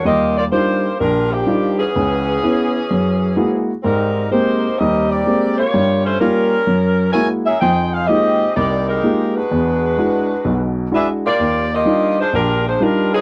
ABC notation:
X:1
M:4/4
L:1/8
Q:"Swing" 1/4=127
K:Eb
V:1 name="Saxophone section"
[B,FGe] [B,FGd] [B,FGc]2 [G,DFB] [F,B,DG]2 [_F,_C_DA]- | [_F,_C_DA]6- [F,CDA] z | [G,CEB]2 [B,EGc]2 [CGBe] [CGBd]2 [B,FG_d]- | [B,FG_d] [=A,_DFc] [G,DFB]4 [_FBd_a] [DAB_f] |
[EAcg] [EAcf] [CGAe]2 [B,EGd] [A,EGB]2 [A,D_G_c]- | [A,D_G_c]4- [A,DGc] z [D^G=B=e] [_B,F=Gd]- | [B,FGd] [B,FGe]2 [A,DFc] [G,DFB] [A,DFc] [G,DFB] [_G,_CEA] |]
V:2 name="Grand piano"
[E,,G,]2 [G,DEF] z B,,,2 [G,DEF] z | [_D,,_D,]2 [_C_D_F] z _G,,2 [A,B,F_G] z | A,,2 [A,B,CG] z [E,,G,]2 [A,B,CG] z | [G,,G,]2 [G,B,F] z _G,,2 [A,B,_F_G] z |
[F,,F,]2 [A,B,EFG] z C,,2 [A,B,EFG] z | =E,,2 [^G,D=E^F] z [=B,,,=B,,]2 [G,DEF] z | E,,2 [G,DEF] z B,,,2 [G,DEF] z |]